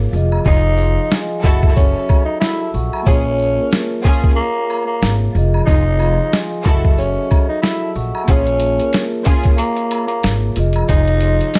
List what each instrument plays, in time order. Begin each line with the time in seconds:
Already playing: vibraphone A#3 F4 G#4 A#4
0.11 upright bass F1, vibraphone F3 F4 G#4, maracas
0.16 vibraphone D#5
0.32 high woodblock
0.45 upright bass F1, string section D#4 F4 G#4, tenor saxophone D#4, kick, maracas
0.77 vibraphone F5 C6, maracas
1.10 vibraphone D#5 G#5, snare, maracas
1.29 vibraphone G#4 D#5
1.42 upright bass F#1, vibraphone F#3 F#4 A4, string section E4 F#4 A4, kick, maracas
1.47 vibraphone E5
1.63 kick
1.76 tenor saxophone C#4, kick, maracas
2.09 kick, high woodblock, maracas
2.25 tenor saxophone D#4
2.40 tenor saxophone E4, snare, maracas
2.60 vibraphone A5 E6
2.74 upright bass A#1, vibraphone F#5 C#6, maracas
2.93 vibraphone E5 A5, high woodblock
3.02 vibraphone A#3 F4 G#4
3.06 upright bass A#1, tenor saxophone C#4, string section C#4 F4 G#4, vibraphone C#5, kick, maracas
3.39 maracas
3.55 vibraphone A#3 F4 G#4
3.59 vibraphone A#4
3.71 snare, maracas
4.04 string section C#4 F4 G#4, kick, maracas
4.24 kick
4.36 tenor saxophone A#3, maracas
4.70 high woodblock, maracas
4.86 tenor saxophone A#3
5.02 upright bass G#1, snare, maracas
5.33 upright bass F1, vibraphone F3 F4 G#4, maracas
5.38 vibraphone D#5
5.54 high woodblock
5.66 upright bass F1, tenor saxophone D#4, string section D#4 F4 G#4, kick, maracas
6.00 vibraphone F5 C6, high woodblock, maracas
6.33 vibraphone D#5 G#5, snare, maracas
6.51 vibraphone G#4 D#5
6.64 upright bass F#1, vibraphone F#3 F#4 A4, string section E4 F#4 A4, kick, maracas
6.69 vibraphone E5
6.85 kick
6.98 tenor saxophone C#4, maracas
7.31 kick, high woodblock, maracas
7.49 tenor saxophone D#4
7.62 tenor saxophone E4, snare, maracas
7.82 vibraphone A5 E6
7.96 upright bass A#1, vibraphone F#5 C#6, maracas
8.15 vibraphone E5 A5, high woodblock
8.24 vibraphone A#3 F4 G#4, closed hi-hat, maracas
8.28 upright bass A#1, string section C#4 F4 G#4, tenor saxophone C#4, vibraphone C#5, kick
8.47 closed hi-hat
8.60 closed hi-hat, maracas
8.77 vibraphone A#3 F4 G#4, closed hi-hat
8.81 vibraphone A#4
8.93 snare, closed hi-hat, maracas
9.25 string section C#4 F4 G#4, kick, closed hi-hat, maracas
9.43 kick, closed hi-hat
9.58 tenor saxophone A#3, closed hi-hat, maracas
9.76 closed hi-hat
9.91 closed hi-hat, high woodblock, maracas
10.07 tenor saxophone A#3, closed hi-hat
10.23 upright bass G#1, snare, closed hi-hat, maracas
10.55 upright bass F1, vibraphone F3 F4 G#4, closed hi-hat, maracas
10.59 vibraphone D#5
10.73 closed hi-hat, high woodblock
10.89 upright bass F1, string section D#4 F4 G#4, tenor saxophone D#4, kick, closed hi-hat, maracas
11.08 closed hi-hat
11.21 vibraphone F5 C6, closed hi-hat, maracas
11.41 closed hi-hat
11.54 vibraphone D#5 G#5, snare, closed hi-hat, maracas